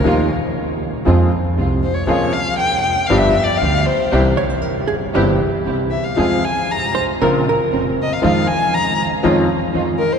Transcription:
<<
  \new Staff \with { instrumentName = "Violin" } { \time 4/4 \key f \minor \tempo 4 = 118 bes'8 r2. c''16 des''16 | des''8 f''8 g''8 g''8 f''16 e''8 d''16 f''8 c''8~ | c''8 r2. e''16 f''16 | f''8 aes''8 bes''8 r2 ees''16 f''16 |
f''8 aes''8 bes''8 r2 bes'16 c''16 | }
  \new Staff \with { instrumentName = "Hollow-body jazz guitar" } { \time 4/4 \key f \minor r1 | r1 | r8 des''16 c''16 bes'8 aes'8 g'4~ g'16 r8. | r4. c''8 bes'8 bes'8. r8. |
r1 | }
  \new Staff \with { instrumentName = "String section" } { \time 4/4 \key f \minor <g ees' f'>8 r4. <aes c' f'>8 r8 <aes c' f'>8 r8 | <bes des' f'>8 r4. <b f' g'>8 r8 <b f' g'>8 r8 | <c' e' g'>8 r4. <c' e' g'>8 r8 <c' e' g'>8 r8 | <c' f' aes'>8 r4. <c' des' bes'>8 r8 <c' des' bes'>8 r8 |
<aes ees' f'>8 r4. <des' ees' f'>8 r8 <des' ees' f'>8 r8 | }
  \new Staff \with { instrumentName = "Grand piano" } { \clef bass \time 4/4 \key f \minor <ees, ees f bes ees' g'>8 r4. <f, f aes c' aes'>8 r8 <c, c>8 r8 | <f, f bes des' aes'>8 r4. <g,, g, f b d' g'>8 r8 <d, d>8 r8 | <c, c e g c' g'>8 r4. <g,, g, e g c' g'>8 r8 <c, c>8 r8 | <f, f aes c' aes'>8 r4. <bes,, bes, des bes c' f'>8 r8 <f,, f,>8 r8 |
<f, ees f aes c' f'>8 r4. <f, ees f aes des' f'>8 r8 <f, f>8 r8 | }
  \new Staff \with { instrumentName = "Upright bass" } { \clef bass \time 4/4 \key f \minor ees,8 r4. f,8 r8 c,8 r8 | f,8 r4. g,,8 r8 d,8 r8 | c,8 r4. g,,8 r8 c,8 r8 | f,8 r4. bes,,8 r8 f,,8 r8 |
f,8 r4. f,8 r8 f,8 r8 | }
>>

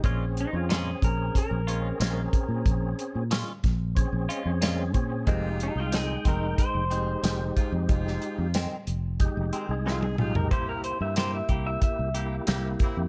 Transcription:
<<
  \new Staff \with { instrumentName = "Clean electric guitar" } { \time 4/4 \key f \minor \tempo 4 = 92 r8 ees'16 f'16 aes'8 bes'8 bes'2~ | bes'4 r2. | r8 ees'16 f'16 aes'8 bes'8 c''2~ | c''4 r2 f'16 aes'16 f'16 bes'16 |
c''16 bes'16 c''16 e''16 c''16 e''16 r16 e''16 e''8 r4. | }
  \new Staff \with { instrumentName = "Horn section" } { \time 4/4 \key f \minor r1 | r1 | <aes ees' f'>4 r2 r8 <aes ees' f'>16 r16 | <aes ees' f'>4 r2 r8 <aes ees' f'>16 r16 |
<bes c' e'>4 r2 r8 <bes c' e'>16 r16 | }
  \new Staff \with { instrumentName = "Tonewheel organ" } { \time 4/4 \key f \minor <c' des' aes'>8. <c' des' aes'>4.~ <c' des' aes'>16 <c' des' aes'>8 <c' des' aes'>4~ | <c' des' aes'>4 r4 <c' des' aes'>8. <c' des' aes'>8. <c' des' aes'>8 | <aes ees' g'>8. <aes ees' g''>4.~ <aes ees' g''>16 <aes ees' g'>8 <aes ees' g'>4~ | <aes ees' g'>4 r4 <aes ees' g'>8. <aes ees' aes'>8. <aes ees' g'>8 |
<bes e' g'>8. <bes e' g'>4.~ <bes e' g'>16 <bes e' g'>8 <bes e' g'>4 | }
  \new Staff \with { instrumentName = "Clean electric guitar" } { \time 4/4 \key f \minor <bes, aes des' f'>8 r8 <bes, aes des' f'>8 r4 <aes des' f'>8 <bes, aes des' f'>8 r8 | r4 <bes, aes des' f'>8 r4 <aes des' f'>8 <bes, aes des' f'>8 r8 | <f, ees aes c'>8 r8 <f, ees aes c'>8 <ees aes c'>8 r8 <ees aes c'>8 <f, ees aes c'>8 r8 | r4 <f, ees aes c'>8 r4 <ees aes c'>8 <f, ees aes c'>8 r8 |
<c bes e' g'>8 r8 <c bes e' g'>8 <bes e' g'>8 r8 <bes e' g'>8 <c bes e' g'>8 r8 | }
  \new Staff \with { instrumentName = "Fingered electric bass" } { \clef bass \time 4/4 \key f \minor bes,,8. f,8. bes,,8 r16 bes,,8. bes,,8 r16 bes,16 | bes,,8 r16 bes,8 r16 bes,,8. bes,,16 r16 f,8. bes,8 | f,,8. c,8. f,,8 r16 f,,8. f,,8 r16 f,16 | f,,8 r16 f,8 r16 f,,8. f,,16 r16 c,8. b,,8 |
c,8. g,8. c,8 r16 c,8. c,8 r16 f,16 | }
  \new DrumStaff \with { instrumentName = "Drums" } \drummode { \time 4/4 <hh bd>8 hh8 <hh sn tamb>8 <hh bd>8 <hh bd>8 hh8 <hh sn tamb>8 <hh bd>8 | <hh bd>8 hh8 <hh sn tamb>8 <hh bd sn>8 <hh bd>8 hh8 <hh sn tamb>8 <hh bd>8 | <hh bd>8 hh8 <hh sn tamb>8 <hh bd>8 <hh bd>8 hh8 <hh sn tamb>8 <hh bd>8 | <hh bd>16 sn16 hh8 <hh sn tamb>8 hh8 <hh bd>8 hh8 sn16 tommh16 toml16 tomfh16 |
<hh bd>8 hh8 <hh sn tamb>8 <hh bd>8 <hh bd>8 hh8 <hh sn tamb>8 <hh bd>8 | }
>>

